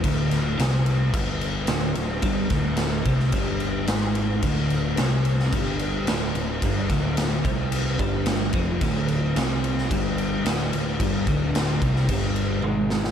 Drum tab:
CC |x-x-x-x-x-x-x-x-|x-x-x-x-x-x-x-x-|x-x-x-x-x-x-x-x-|x-x-x-x-x-x-x-x-|
SD |--o-o-------o---|--o-o--o----o---|----o--o----o---|--o-o-------o---|
T1 |----------------|----------------|----------------|----------------|
BD |o-------o-------|o-o---o-o-------|o-------o-------|o-o---o---o---o-|

CC |x-x-x-x-x-x-x-x-|x-x-x-x-x-x-----|
SD |----o--o----o---|----o--o------oo|
T1 |----------------|------------o---|
BD |o-------o-------|o-o---o-o-------|